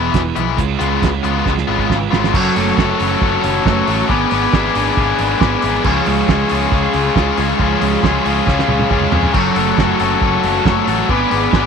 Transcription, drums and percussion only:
0.14 kick loud
0.14 snare loud
0.14 closed hi-hat medium
0.36 closed hi-hat medium
0.58 kick medium
0.58 closed hi-hat medium
0.81 closed hi-hat medium
1.02 kick loud
1.02 snare medium
1.02 closed hi-hat medium
1.24 closed hi-hat medium
1.46 kick loud
1.46 snare medium
1.58 snare medium
1.79 kick medium
1.90 kick medium
1.90 snare medium
2.13 snare loud
2.24 snare medium
2.34 kick loud
2.34 crash loud
2.56 open hi-hat medium
2.78 kick medium
2.78 snare loud
3.00 open hi-hat medium
3.22 kick loud
3.44 open hi-hat medium
3.66 kick loud
3.66 snare loud
3.88 open hi-hat medium
4.09 kick loud
4.31 open hi-hat medium
4.53 kick loud
4.53 snare loud
4.75 open hi-hat medium
4.97 kick loud
5.19 open hi-hat medium
5.41 kick loud
5.41 snare loud
5.62 open hi-hat medium
5.84 kick loud
5.84 crash loud
6.06 open hi-hat medium
6.28 kick loud
6.28 snare loud
6.49 open hi-hat medium
6.72 kick loud
6.93 open hi-hat medium
7.16 kick loud
7.16 snare loud
7.37 open hi-hat medium
7.59 kick loud
7.82 open hi-hat medium
8.03 kick loud
8.03 snare loud
8.26 open hi-hat medium
8.47 kick loud
8.47 snare medium
8.59 snare medium
8.68 high tom medium
8.80 high tom medium
8.90 kick loud
8.90 mid tom medium
9.02 mid tom medium
9.12 floor tom loud
9.23 floor tom medium
9.34 kick loud
9.34 crash loud
9.56 open hi-hat medium
9.78 kick medium
9.78 snare loud
10.00 open hi-hat medium
10.22 kick loud
10.44 snare soft
10.44 open hi-hat medium
10.65 kick loud
10.65 snare loud
10.88 open hi-hat medium
11.09 kick loud
11.31 open hi-hat medium
11.53 kick loud
11.53 snare loud

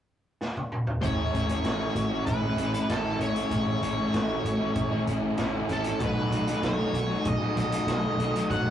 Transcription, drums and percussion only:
0.41 snare medium
0.57 high tom medium
0.72 mid tom medium
0.87 floor tom medium
1.03 kick loud
1.03 closed hi-hat medium
1.35 closed hi-hat medium
1.49 closed hi-hat medium
1.64 snare loud
1.64 closed hi-hat medium
1.96 closed hi-hat medium
2.27 kick loud
2.27 closed hi-hat medium
2.58 closed hi-hat medium
2.74 closed hi-hat medium
2.89 snare loud
2.89 closed hi-hat medium
3.21 closed hi-hat soft
3.36 closed hi-hat medium
3.51 kick medium
3.51 closed hi-hat medium
3.83 closed hi-hat medium
4.14 snare loud
4.14 closed hi-hat medium
4.45 closed hi-hat medium
4.75 kick loud
4.75 closed hi-hat medium
5.07 closed hi-hat medium
5.37 snare loud
5.37 closed hi-hat medium
5.69 closed hi-hat medium
5.84 closed hi-hat medium
6.00 kick loud
6.00 closed hi-hat medium
6.32 closed hi-hat medium
6.47 closed hi-hat medium
6.63 snare loud
6.63 closed hi-hat medium
6.94 closed hi-hat medium
7.25 kick loud
7.25 closed hi-hat medium
7.57 closed hi-hat medium
7.72 closed hi-hat medium
7.88 snare loud
7.88 closed hi-hat medium
8.20 closed hi-hat medium
8.35 closed hi-hat medium
8.50 kick loud
8.50 closed hi-hat medium

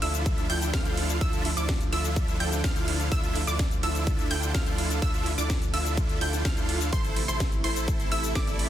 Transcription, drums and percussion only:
0.02 open hi-hat loud
0.02 ride medium
0.14 closed hi-hat soft
0.14 shaker medium
0.26 kick loud
0.26 closed hi-hat medium
0.26 ride medium
0.26 shaker medium
0.38 closed hi-hat soft
0.38 shaker soft
0.50 open hi-hat loud
0.50 ride medium
0.62 closed hi-hat soft
0.62 shaker medium
0.73 kick loud
0.73 snare loud
0.73 open hi-hat medium
0.73 ride medium
0.73 shaker medium
0.85 snare soft
0.85 closed hi-hat soft
0.85 shaker soft
0.97 open hi-hat loud
0.97 ride medium
1.09 closed hi-hat soft
1.09 shaker medium
1.21 kick loud
1.21 closed hi-hat medium
1.21 ride medium
1.21 shaker medium
1.33 closed hi-hat soft
1.33 shaker soft
1.45 open hi-hat loud
1.45 ride medium
1.58 shaker medium
1.69 kick loud
1.69 snare loud
1.69 closed hi-hat medium
1.69 ride medium
1.69 shaker medium
1.81 closed hi-hat soft
1.81 shaker soft
1.93 open hi-hat loud
1.93 ride medium
2.04 closed hi-hat soft
2.04 shaker medium
2.16 kick loud
2.16 closed hi-hat medium
2.16 ride medium
2.16 shaker medium
2.28 closed hi-hat soft
2.28 shaker soft
2.40 open hi-hat loud
2.40 ride medium
2.52 snare soft
2.52 closed hi-hat soft
2.52 shaker medium
2.64 kick loud
2.64 snare loud
2.64 closed hi-hat medium
2.64 ride medium
2.64 shaker medium
2.76 closed hi-hat soft
2.76 shaker soft
2.88 open hi-hat loud
2.88 ride medium
3.00 closed hi-hat soft
3.00 shaker medium
3.12 kick loud
3.12 closed hi-hat medium
3.12 ride medium
3.12 shaker medium
3.24 closed hi-hat soft
3.24 shaker soft
3.35 open hi-hat loud
3.35 ride medium
3.48 shaker medium
3.59 kick loud
3.59 snare loud
3.59 closed hi-hat medium
3.59 ride medium
3.59 shaker medium
3.71 closed hi-hat soft
3.71 shaker soft
3.83 open hi-hat loud
3.83 ride medium
3.95 closed hi-hat soft
3.95 shaker medium
4.07 kick loud
4.07 closed hi-hat medium
4.07 ride medium
4.07 shaker medium
4.19 closed hi-hat soft
4.19 shaker soft
4.31 open hi-hat loud
4.31 ride medium
4.43 closed hi-hat soft
4.43 shaker medium
4.54 kick loud
4.54 snare loud
4.54 open hi-hat medium
4.54 ride medium
4.54 shaker medium
4.66 snare soft
4.66 closed hi-hat soft
4.66 shaker soft
4.78 open hi-hat loud
4.78 ride medium
4.90 closed hi-hat soft
4.90 shaker medium
5.02 kick loud
5.02 closed hi-hat medium
5.02 ride medium
5.02 shaker medium
5.14 closed hi-hat soft
5.14 shaker soft
5.26 open hi-hat loud
5.26 ride medium
5.38 closed hi-hat soft
5.38 shaker medium
5.50 kick loud
5.50 snare loud
5.50 closed hi-hat medium
5.50 ride medium
5.50 shaker medium
5.62 closed hi-hat soft
5.62 shaker soft
5.74 open hi-hat loud
5.74 ride medium
5.86 closed hi-hat soft
5.86 shaker medium
5.97 kick loud
5.97 closed hi-hat medium
5.97 ride medium
5.97 shaker medium
6.09 closed hi-hat soft
6.09 shaker soft
6.21 open hi-hat loud
6.21 ride medium
6.33 snare soft
6.33 closed hi-hat soft
6.33 shaker medium
6.45 kick loud
6.45 snare loud
6.45 closed hi-hat medium
6.45 ride medium
6.45 shaker medium
6.57 closed hi-hat soft
6.57 shaker soft
6.69 open hi-hat loud
6.69 ride medium
6.81 closed hi-hat soft
6.81 shaker medium
6.93 kick loud
6.93 closed hi-hat medium
6.93 ride medium
6.93 shaker medium
7.05 closed hi-hat soft
7.05 shaker soft
7.16 open hi-hat loud
7.16 ride medium
7.29 shaker medium
7.40 kick loud
7.40 snare loud
7.40 closed hi-hat medium
7.40 ride medium
7.40 shaker medium
7.52 closed hi-hat soft
7.52 shaker soft
7.64 open hi-hat loud
7.64 ride medium
7.76 closed hi-hat soft
7.76 shaker medium
7.88 kick loud
7.88 closed hi-hat medium
7.88 ride medium
7.88 shaker medium
8.00 closed hi-hat soft
8.00 shaker soft
8.12 open hi-hat loud
8.12 ride medium
8.24 closed hi-hat soft
8.24 shaker medium
8.35 kick loud
8.35 snare loud
8.35 open hi-hat medium
8.35 ride medium
8.35 shaker medium
8.47 snare soft
8.47 closed hi-hat soft
8.47 shaker soft
8.59 open hi-hat loud
8.59 ride medium

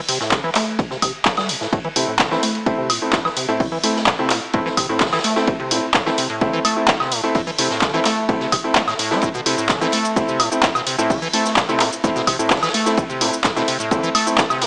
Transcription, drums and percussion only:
0.09 open hi-hat medium
0.09 ride medium
0.20 snare medium
0.31 kick loud
0.31 snare loud
0.31 clap loud
0.31 ride medium
0.55 snare soft
0.55 clap medium
0.55 open hi-hat medium
0.55 ride medium
0.79 kick loud
0.79 ride medium
0.90 snare soft
1.02 kick medium
1.02 open hi-hat loud
1.02 ride medium
1.02 high woodblock medium
1.25 kick loud
1.25 snare loud
1.25 clap loud
1.25 ride medium
1.37 snare loud
1.37 ride medium
1.37 high woodblock medium
1.49 open hi-hat medium
1.49 ride medium
1.61 snare soft
1.73 kick loud
1.73 ride medium
1.84 ride soft
1.96 open hi-hat loud
1.96 ride medium
2.19 kick loud
2.19 snare loud
2.19 clap loud
2.19 ride medium
2.31 snare medium
2.43 open hi-hat medium
2.43 ride medium
2.55 ride soft
2.66 kick loud
2.66 ride medium
2.90 open hi-hat loud
2.90 ride medium
2.90 high woodblock medium
3.12 kick loud
3.12 snare loud
3.12 clap loud
3.12 ride medium
3.25 snare soft
3.25 high woodblock medium
3.37 open hi-hat medium
3.37 ride medium
3.60 kick loud
3.60 open hi-hat medium
3.72 ride soft
3.84 open hi-hat loud
3.84 ride medium
3.96 snare medium
4.06 kick loud
4.06 snare loud
4.06 clap loud
4.06 ride medium
4.30 snare soft
4.30 clap medium
4.30 open hi-hat medium
4.30 ride medium
4.53 kick loud
4.53 ride medium
4.66 snare soft
4.77 kick medium
4.77 open hi-hat loud
4.77 ride medium
4.77 high woodblock medium
5.00 kick loud
5.00 snare medium
5.00 clap loud
5.00 ride medium
5.07 snare medium
5.07 ride medium
5.12 snare medium
5.12 ride medium
5.12 high woodblock medium
5.19 snare medium
5.19 ride medium
5.24 open hi-hat medium
5.24 ride medium
5.36 snare soft
5.47 kick loud
5.47 ride medium
5.60 ride soft
5.71 open hi-hat loud
5.71 ride medium
5.94 kick loud
5.94 snare loud
5.94 clap loud
5.94 ride medium
6.06 snare medium
6.18 open hi-hat medium
6.18 ride medium
6.30 ride soft
6.41 kick loud
6.41 ride medium
6.65 open hi-hat loud
6.65 ride medium
6.65 high woodblock medium
6.88 kick loud
6.88 snare loud
6.88 clap loud
6.88 ride medium
7.00 snare soft
7.00 high woodblock medium
7.12 open hi-hat medium
7.12 ride medium
7.35 kick loud
7.35 open hi-hat medium
7.47 ride soft
7.58 open hi-hat loud
7.58 ride medium
7.70 snare medium
7.81 kick loud
7.81 snare loud
7.81 clap loud
7.81 ride medium
8.05 snare soft
8.05 clap medium
8.05 open hi-hat medium
8.05 ride medium
8.29 kick loud
8.29 ride medium
8.40 snare soft
8.52 kick medium
8.52 open hi-hat loud
8.52 ride medium
8.52 high woodblock medium
8.75 kick loud
8.75 snare loud
8.75 clap loud
8.75 ride medium
8.88 snare medium
8.88 high woodblock medium
8.99 open hi-hat medium
8.99 ride medium
9.11 snare soft
9.22 kick loud
9.22 ride medium
9.22 shaker medium
9.34 ride soft
9.34 shaker soft
9.46 open hi-hat loud
9.46 ride medium
9.58 shaker medium
9.69 kick loud
9.69 snare loud
9.69 clap loud
9.69 ride medium
9.69 shaker medium
9.82 snare medium
9.82 shaker soft
9.92 open hi-hat medium
9.92 ride medium
10.05 ride soft
10.05 shaker medium
10.16 kick loud
10.16 ride loud
10.16 shaker medium
10.28 shaker soft
10.40 open hi-hat loud
10.40 ride medium
10.40 high woodblock medium
10.52 shaker medium
10.63 kick loud
10.63 snare loud
10.63 clap loud
10.63 ride medium
10.63 shaker medium
10.75 snare soft
10.75 high woodblock medium
10.75 shaker soft
10.87 open hi-hat medium
10.87 ride medium
10.99 shaker medium
11.10 kick loud
11.10 open hi-hat medium
11.10 shaker medium
11.22 ride soft
11.22 shaker soft
11.33 open hi-hat loud
11.33 ride medium
11.45 snare medium
11.45 shaker medium
11.56 kick loud
11.56 snare loud
11.56 clap loud
11.56 ride medium
11.56 shaker medium
11.69 shaker soft
11.80 snare soft
11.80 clap medium
11.80 open hi-hat medium
11.80 ride medium
11.93 shaker medium
12.04 kick loud
12.04 ride medium
12.04 shaker medium
12.16 snare soft
12.16 shaker soft
12.27 kick medium
12.27 open hi-hat medium
12.27 ride medium
12.27 high woodblock medium
12.39 shaker medium
12.50 kick loud
12.50 snare medium
12.50 clap loud
12.50 ride medium
12.50 shaker medium
12.57 snare medium
12.57 ride medium
12.63 snare medium
12.63 ride medium
12.63 high woodblock medium
12.63 shaker soft
12.68 snare medium
12.68 ride medium
12.74 open hi-hat medium
12.74 ride medium
12.86 snare medium
12.86 shaker medium
12.97 kick loud
12.97 ride loud
12.97 shaker medium
13.10 ride soft
13.10 shaker soft
13.21 open hi-hat loud
13.21 ride medium
13.33 shaker medium
13.44 kick loud
13.44 snare loud
13.44 clap loud
13.44 ride medium
13.44 shaker medium
13.56 snare medium
13.56 shaker soft
13.68 open hi-hat medium
13.68 ride medium
13.79 ride soft
13.79 shaker medium
13.91 kick loud
13.91 ride medium
13.91 shaker medium
14.04 shaker soft
14.15 open hi-hat loud
14.15 ride medium
14.15 high woodblock medium
14.27 shaker medium
14.38 kick loud
14.38 snare loud
14.38 clap loud
14.38 ride medium
14.38 shaker medium
14.50 snare soft
14.50 high woodblock medium
14.50 shaker soft
14.61 snare loud
14.61 open hi-hat medium
14.61 ride medium

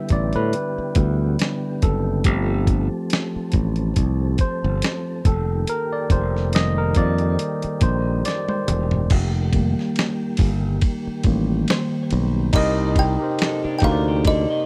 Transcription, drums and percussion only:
0.09 kick medium
0.09 closed hi-hat medium
0.33 closed hi-hat soft
0.53 closed hi-hat medium
0.95 kick medium
0.95 closed hi-hat medium
1.39 snare loud
1.39 closed hi-hat medium
1.82 kick medium
1.82 closed hi-hat medium
2.24 kick loud
2.24 closed hi-hat medium
2.67 kick medium
2.67 closed hi-hat medium
3.10 snare loud
3.10 closed hi-hat medium
3.52 kick medium
3.52 closed hi-hat medium
3.76 closed hi-hat soft
3.96 kick medium
3.96 closed hi-hat medium
4.38 kick medium
4.38 closed hi-hat medium
4.82 snare loud
4.82 closed hi-hat medium
5.25 kick loud
5.25 closed hi-hat medium
5.67 closed hi-hat medium
6.10 kick medium
6.10 closed hi-hat medium
6.36 snare soft
6.53 snare loud
6.53 closed hi-hat medium
6.95 kick medium
6.95 closed hi-hat medium
7.18 closed hi-hat soft
7.39 closed hi-hat medium
7.62 closed hi-hat medium
7.81 kick medium
7.81 closed hi-hat medium
8.25 snare medium
8.25 closed hi-hat loud
8.48 high tom medium
8.68 closed hi-hat medium
8.68 mid tom medium
8.91 floor tom loud
9.10 kick loud
9.10 crash medium
9.10 ride medium
9.53 kick medium
9.53 ride medium
9.79 snare soft
9.96 snare loud
9.96 ride medium
10.37 kick medium
10.37 open hi-hat medium
10.37 ride medium
10.81 kick medium
10.81 ride medium
11.23 kick medium
11.23 ride medium
11.68 snare loud
11.68 ride medium
12.11 ride medium
12.53 kick loud
12.53 crash loud
12.53 ride medium
12.96 kick medium
12.96 ride medium
13.39 snare loud
13.39 ride medium
13.80 kick medium
13.80 ride medium
14.25 kick medium
14.25 ride medium

